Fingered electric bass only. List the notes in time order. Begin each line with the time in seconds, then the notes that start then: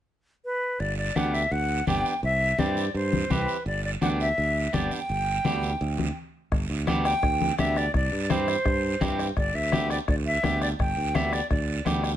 0.80 G1
1.16 D2
1.51 D2
1.87 G1
2.23 C2
2.59 G2
2.94 G2
3.30 C2
3.66 G1
4.02 D2
4.38 D2
4.74 G1
5.10 G1
5.45 D2
5.81 D2
6.52 G1
6.70 D2
7.23 D2
7.59 D2
7.94 C2
8.12 G2
8.65 G2
9.01 G2
9.37 G1
9.54 D2
10.08 D2
10.44 D2
10.79 G1
10.97 D2
11.50 D2
11.86 D2